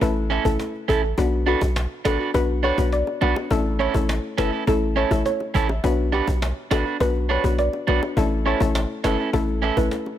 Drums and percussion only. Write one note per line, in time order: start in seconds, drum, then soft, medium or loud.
0.01 cajon bass loud
0.30 cajon slap soft
0.45 cajon bass loud
0.59 cajon slap medium
0.74 cajon slap soft
0.89 cajon bass medium
1.18 cajon bass loud
1.18 high bongo medium
1.47 cajon slap soft
1.61 cajon bass medium
1.61 high bongo medium
1.76 cajon slap loud
2.05 cajon slap loud
2.05 high bongo medium
2.34 cajon bass loud
2.34 high bongo medium
2.49 cajon slap soft
2.63 cajon slap soft
2.78 cajon bass loud
2.78 high bongo medium
2.92 cajon slap medium
3.07 cajon slap soft
3.07 high bongo medium
3.22 cajon slap soft
3.22 low bongo medium
3.36 high bongo medium
3.51 cajon bass loud
3.51 high bongo medium
3.65 cajon slap soft
3.80 cajon slap soft
3.94 cajon bass medium
3.94 high bongo medium
4.09 cajon slap loud
4.38 cajon slap loud
4.38 high bongo medium
4.67 cajon bass loud
4.67 high bongo medium
4.82 cajon slap soft
4.97 cajon slap soft
5.11 cajon bass medium
5.11 high bongo medium
5.25 cajon slap medium
5.40 cajon slap soft
5.40 high bongo medium
5.55 cajon bass medium
5.55 low bongo medium
5.69 high bongo medium
5.84 cajon bass loud
5.84 high bongo medium
5.98 cajon slap soft
6.13 cajon slap soft
6.27 cajon bass medium
6.27 high bongo medium
6.42 cajon slap loud
6.71 cajon slap loud
6.71 high bongo medium
7.00 cajon bass loud
7.00 high bongo medium
7.15 cajon slap soft
7.29 cajon slap soft
7.44 cajon bass loud
7.44 high bongo medium
7.58 cajon slap medium
7.73 cajon slap soft
7.73 high bongo medium
7.88 cajon slap soft
7.88 low bongo medium
8.03 high bongo medium
8.17 cajon bass loud
8.17 high bongo medium
8.46 cajon slap soft
8.60 cajon bass loud
8.60 high bongo medium
8.75 cajon slap loud
8.90 cajon slap soft
9.04 cajon slap loud
9.04 high bongo medium
9.33 cajon bass loud
9.33 high bongo medium
9.48 cajon slap soft
9.62 cajon slap soft
9.77 cajon bass medium
9.77 high bongo medium
9.91 cajon slap medium
10.06 cajon slap soft
10.06 high bongo medium